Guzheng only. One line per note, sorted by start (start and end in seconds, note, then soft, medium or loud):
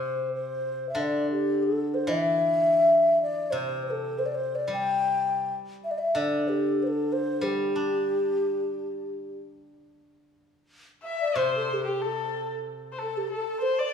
0.00 0.96 C3 medium
0.95 2.88 D3 medium
2.07 4.02 E3 medium
3.52 5.49 C3 medium
4.68 6.63 G3 soft
6.15 8.07 D3 medium
7.41 9.38 G3 medium
7.76 9.06 D4 soft
11.35 13.30 C3 medium